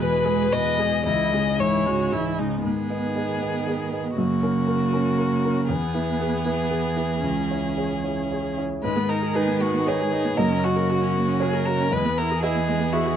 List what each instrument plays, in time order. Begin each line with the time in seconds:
Already playing: grand piano E2 G#3, string section E3 G#4 B4
0.00 grand piano B2, cello E3, viola B4, violin B4
0.25 grand piano G#3, cello G#3, viola G#4
0.51 grand piano B2, cello E3, viola B4, violin D#5
0.77 cello G#3, grand piano G#3, viola G#4
1.05 grand piano C#2, cello E3, viola E4, string section G#4, violin D#5
1.32 cello C#3, grand piano G#3, viola G#4
1.58 grand piano G#2, cello E3, viola E4, violin C#5
1.85 cello C#3, grand piano G#3, viola F#4
2.11 grand piano G#2, cello E3, viola E4
2.38 cello C#3, grand piano G#3, viola D#4
2.64 grand piano G#2, cello D#3, viola B3, violin G#4
2.90 grand piano B3 D#5
3.15 grand piano G#4 D#5
3.41 grand piano B3 D#5
3.67 grand piano G#4 D#5
3.92 grand piano B3 D#5
4.17 grand piano F#2, cello C#3, viola A#3, violin F#4
4.43 grand piano C#4 A#4
4.67 grand piano A#4
4.93 grand piano C#4 A#4
5.18 grand piano A#4
5.45 grand piano C#4 A#4
5.69 grand piano E2, cello E3, viola B3, violin G#4
5.94 grand piano E4 B4
6.20 grand piano G#4 B4
6.45 grand piano E4 B4
6.70 grand piano G#4 B4
6.96 grand piano E4 B4
7.22 grand piano C#2, viola C#4
7.50 grand piano E4 C#5
7.77 grand piano G#4 C#5
8.03 grand piano E4 C#5
8.31 grand piano G#4 C#5
8.58 grand piano E4 C#5
8.82 grand piano G#2, cello D#3, string section G#3 D#4 G#4, viola G#3, violin B4
8.96 viola B3
9.08 viola D#4, violin A#4
9.22 viola G#4
9.34 viola D#4, grand piano D#4 B4, violin G#4
9.47 viola B3
9.60 viola G#3, violin F#4
9.73 viola B3
9.86 viola D#4, grand piano G#4 B4 C#5, violin G#4
10.00 viola G#4
10.12 viola D#4
10.24 viola B3
10.37 grand piano F#2 D#5, cello C#3, viola A#3, string section A#3 C#4 F#4, violin A#4
10.50 viola C#4
10.63 viola F#4, violin F#4
10.76 viola A#4
10.89 grand piano A#3, viola F#4
11.01 viola C#4
11.15 viola A#3
11.27 viola C#4
11.40 viola F#4, violin G#4, grand piano A#4 C#5
11.53 viola A#4
11.66 viola F#4, violin A#4
11.80 viola C#4
11.91 grand piano E2, cello E3, viola G#3, string section B3 E4 G#4, violin B4
12.05 viola B3
12.18 viola E4, violin A#4
12.30 viola G#4
12.42 grand piano B3 D#5, viola E4, violin G#4
12.55 viola B3
12.68 viola G#3
12.80 viola B3
12.92 viola E4, violin F#4, grand piano G#4 E5
13.06 viola G#4